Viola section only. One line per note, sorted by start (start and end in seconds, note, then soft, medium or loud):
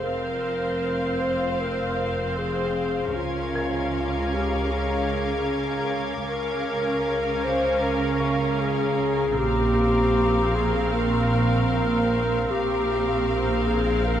0.02 3.13 C4 soft
0.02 3.13 C5 soft
3.17 6.23 C#4 soft
3.17 6.23 A#4 soft
6.26 9.34 C#4 soft
6.26 9.34 A#4 soft
9.38 12.46 C4 soft
9.38 12.46 A#4 soft
12.51 14.20 C4 soft
12.51 14.20 A#4 soft